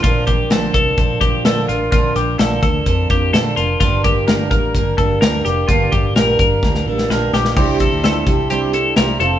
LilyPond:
<<
  \new Staff \with { instrumentName = "Clean electric guitar" } { \time 4/4 \key c \mixolydian \tempo 4 = 128 f'8 g'8 a'8 a'4 g'8 a'8 f'8 | f'8 g'8 a'8 a'4 g'8 a'8 f'8 | f'8 g'8 bes'8 bes'4 a'8 bes'8 g'8 | f'8 g'8 bes'8 bes'4 a'8 bes'8 g'8 |
g'8 a'8 a'4 g'8 a'8 bes'8 a'8 | }
  \new Staff \with { instrumentName = "Upright piano" } { \time 4/4 \key c \mixolydian r1 | r1 | r1 | r1 |
<d' e' c''>8 r8 <d' e' c''>8 r8 <d' e' c''>8 r8 <d' e' c''>8 <f' a' c''>8 | }
  \new Staff \with { instrumentName = "Steel-string acoustic guitar" } { \time 4/4 \key c \mixolydian <bes, d f bes d' bes'>8 <f bes d' bes'>8 <bes, d f bes d' bes'>8 <f bes d' bes'>8 <f bes d' bes'>8 <f bes d' bes'>8 <bes, d f bes d' bes'>8 <f bes d' bes'>8 | <bes, d f bes d' bes'>8 <f bes d' bes'>8 <bes, d f bes d' bes'>8 <f bes d' bes'>8 <f bes d' bes'>8 <f bes d' bes'>8 <bes, d f bes d' bes'>8 <f bes d' bes'>8 | <g, d g bes d' bes'>8 <g bes d' bes'>8 <g, d g bes d' bes'>8 <g bes d' bes'>8 <g bes d' bes'>8 <g bes d' bes'>8 <g, d g bes d' bes'>8 <g bes d' bes'>8 | <g, d g bes d' bes'>8 <g bes d' bes'>8 <g, d g bes d' bes'>8 <g bes d' bes'>8 <g bes d' bes'>8 <g bes d' bes'>8 <g, d g bes d' bes'>8 <g bes d' bes'>8 |
<c g d' e' g'>8 <d' e' g'>8 <g d' e' g'>8 <d' e' g'>8 <c g d' e' g'>8 <d' e' g'>8 <g d' e' g'>8 <c' f' a'>8 | }
  \new Staff \with { instrumentName = "Fingered electric bass" } { \clef bass \time 4/4 \key c \mixolydian bes,,4. c,8 bes,,8 bes,,8 bes,8 a,,8 | bes,,8 bes,,8 bes,,8 d,8 f,8 f,8 bes,8 f,,8 | g,,4. a,,8 g,,8 g,,8 d,8 f,,8 | g,,8 g,,8 bes,,8 g,,8 d,8 a,,8 bes,,8 bes,,8 |
c,8. d,8. c,4. c,8 f,,8 | }
  \new DrumStaff \with { instrumentName = "Drums" } \drummode { \time 4/4 <hh bd>8 <hh bd>8 <hh sn>8 <hh bd>8 <hh bd>8 <hh bd>8 <hh sn>8 hh8 | <hh bd>8 hh8 <hh sn>8 <hh bd>8 <hh bd>8 <hh bd>8 <hh sn>8 hh8 | <hh bd>8 <hh bd>8 <hh sn>8 <hh bd>8 <hh bd>8 <hh bd>8 <hh sn>8 hh8 | <hh bd>8 <hh bd>8 <hh sn>8 <hh bd>8 <bd sn>16 sn8 sn16 sn8 sn16 sn16 |
<cymc bd>8 <hh bd>8 <hh sn>8 <hh bd>8 hh8 hh8 <hh sn>8 hh8 | }
>>